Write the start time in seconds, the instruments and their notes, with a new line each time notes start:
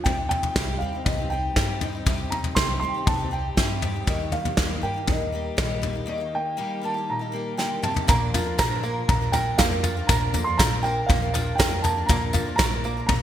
0.04 upright bass C2, steel-string acoustic guitar C3 G3 C4 D#4 G4, upright piano G5, kick, floor tom
0.18 steel-string acoustic guitar C4 D#4 G4
0.29 steel-string acoustic guitar D#4, upright piano G5, floor tom
0.43 floor tom
0.56 upright bass C2, steel-string acoustic guitar C3 G3 C4 D#4 G4, kick, snare
0.78 upright bass D#2, steel-string acoustic guitar G3 C4, upright piano F5
0.83 steel-string acoustic guitar D#4 G4
0.93 steel-string acoustic guitar C4 D#4 G4
1.05 upright bass C2, steel-string acoustic guitar G2, upright piano D#5, kick, floor tom
1.18 steel-string acoustic guitar C4 D#4 G4
1.30 steel-string acoustic guitar G3 C4 D#4 G4, upright piano G5
1.56 upright bass G2, steel-string acoustic guitar C3 G3 C4 D#4 G4, kick, snare
1.81 steel-string acoustic guitar G3 C4 D#4 G4, floor tom
1.93 steel-string acoustic guitar C4 D#4 G4
2.06 upright bass C2, steel-string acoustic guitar C3 G3 C4 D#4 G4, kick, floor tom
2.18 steel-string acoustic guitar C4 D#4 G4
2.30 steel-string acoustic guitar D#4, upright piano A#5, floor tom
2.44 floor tom
2.55 upright bass C2, steel-string acoustic guitar C3 G3 C4 D#4 G4, upright piano C6, kick, snare
2.80 upright bass D#2, steel-string acoustic guitar G3 C4 D#4, upright piano C6
2.84 steel-string acoustic guitar G4
2.94 steel-string acoustic guitar C4 D#4 G4
3.06 upright bass C2, steel-string acoustic guitar G2, upright piano A5, kick, floor tom
3.19 steel-string acoustic guitar C4 D#4 G4
3.31 steel-string acoustic guitar G3 C4 D#4 G4, upright piano G5
3.57 upright bass G2, steel-string acoustic guitar C3 G3 C4 D#4 G4, kick, snare
3.81 steel-string acoustic guitar G3 C4 D#4 G4, floor tom
3.94 steel-string acoustic guitar C4 D#4 G4
4.07 upright bass D#2, steel-string acoustic guitar D#3 G3 A#3 D#4 G4, upright piano D#5, kick, floor tom
4.20 steel-string acoustic guitar A#3 D#4 G4
4.32 steel-string acoustic guitar A#3, upright piano F5, floor tom
4.45 floor tom
4.57 upright bass D#2, steel-string acoustic guitar D#3 G3 A#3 D#4 G4, kick, snare
4.82 upright bass G2, steel-string acoustic guitar G3 A#3 D#4 G4 A#4, upright piano G5
4.94 steel-string acoustic guitar A#3 D#4 G4
5.07 upright bass D#2, steel-string acoustic guitar A#2, upright piano D#5, kick, floor tom
5.19 steel-string acoustic guitar A#3 D#4 G4
5.32 steel-string acoustic guitar G3 A#3 D#4 G4
5.57 upright bass A#1, steel-string acoustic guitar D#3 G3 A#3 D#4 G4, upright piano D#5, kick, snare
5.82 steel-string acoustic guitar G3 A#3 D#4 G4, floor tom
5.93 steel-string acoustic guitar A#3 D#4 G4
6.06 steel-string acoustic guitar D#3 G3 A#3 D#4 G4, upright piano D#5
6.18 steel-string acoustic guitar A#3 D#4 G4
6.35 steel-string acoustic guitar A#3, upright piano G5
6.57 steel-string acoustic guitar D#3 G3 A#3 D#4 G4
6.81 steel-string acoustic guitar G3 A#3 D#4 G4 A#4, upright piano A5
6.94 steel-string acoustic guitar D#4 G4
6.98 steel-string acoustic guitar A#3
7.09 steel-string acoustic guitar A#2, upright piano A#5
7.19 steel-string acoustic guitar A#3 D#4 G4
7.32 steel-string acoustic guitar G3 A#3 D#4 G4
7.57 steel-string acoustic guitar D3 D#3 G3 A#3 D#4 G4, upright piano G5, snare
7.82 steel-string acoustic guitar C3 G3 A#3 D#4 G4, upright piano A5, mid tom
7.94 steel-string acoustic guitar A#3 D#4 G4, floor tom
8.07 grand piano A#1 A#2 F3 D4 A#4 D5, upright bass A#1, steel-string acoustic guitar A#2 D3 F3 A#3 D4 A#4, five-string banjo A#3, upright piano A#5, kick, floor tom, tambourine
8.34 upright bass F2, five-string banjo F4, floor tom, tambourine
8.45 steel-string acoustic guitar F3 A#3 D4 A#4
8.58 upright bass A#1, steel-string acoustic guitar A#2 D3 F3 A#3 D4 A#4, five-string banjo A#4, upright piano A#5, kick, snare, tambourine
8.83 steel-string acoustic guitar F3 A#3 D4 A#4, five-string banjo A#3, tambourine
9.08 upright bass A#1, upright piano A#5, kick, floor tom, tambourine
9.21 steel-string acoustic guitar F3 A#3 D4 A#4
9.32 steel-string acoustic guitar F3 A#3 D4 A#4, five-string banjo A#4, upright piano G5, floor tom, tambourine
9.58 upright bass F2, steel-string acoustic guitar A#2 D3 F3 A#3 D4 A#4, five-string banjo A#3, upright piano F5, kick, snare, tambourine
9.71 steel-string acoustic guitar F3 A#3 D4 A#4
9.83 five-string banjo F4, floor tom, tambourine
9.96 steel-string acoustic guitar F3 A#3 D4 A#4
10.07 grand piano A#1 A#2 F3 D4 A#4 D5, upright bass A#1, steel-string acoustic guitar A#2 D3 F3 A#3 D4 A#4, five-string banjo A#4, upright piano A#5, kick, floor tom, tambourine
10.33 upright bass F2, five-string banjo A#3, floor tom, tambourine
10.44 steel-string acoustic guitar D4 A#4, upright piano C6
10.48 steel-string acoustic guitar F3 A#3
10.58 upright bass A#1, steel-string acoustic guitar A#2 D3 F3 A#3 D4 A#4, five-string banjo F4, upright piano A#5, kick, snare, tambourine
10.83 steel-string acoustic guitar F3 A#3 D4 A#4, five-string banjo A#4, upright piano G5, tambourine
11.06 upright bass A#1, five-string banjo A#3, upright piano F5, kick, floor tom, tambourine
11.22 steel-string acoustic guitar F3 A#3 D4 A#4
11.34 steel-string acoustic guitar F3 A#3 D4, five-string banjo F4, floor tom, tambourine
11.38 steel-string acoustic guitar A#4
11.55 steel-string acoustic guitar A#2 D3, five-string banjo A#4, upright piano G5
11.59 upright bass F2, steel-string acoustic guitar F3 A#3 D4 A#4, kick, snare, tambourine
11.70 steel-string acoustic guitar F3 A#3 D4 A#4
11.82 five-string banjo A#3, upright piano A5, floor tom, tambourine
11.96 steel-string acoustic guitar F3 A#3 D4 A#4
12.06 grand piano A#1 A#2 F3 D4 A#4, upright bass A#1, steel-string acoustic guitar A#2 D3 F3 A#3 D4, five-string banjo A#3, upright piano A#5, kick, floor tom, tambourine
12.11 steel-string acoustic guitar A#4, grand piano D5
12.33 upright bass F2, five-string banjo F4, floor tom, tambourine
12.45 steel-string acoustic guitar F3 A#3 D4 A#4
12.56 upright bass A#1, steel-string acoustic guitar A#2 D3 F3 A#3, five-string banjo A#4, upright piano A#5, kick, snare, tambourine
12.60 steel-string acoustic guitar D4 A#4
12.84 steel-string acoustic guitar F3 A#3 D4 A#4, five-string banjo A#3, tambourine
12.97 steel-string acoustic guitar F3 A#3 D4 A#4
13.07 upright bass A#1, upright piano A#5, kick, floor tom, tambourine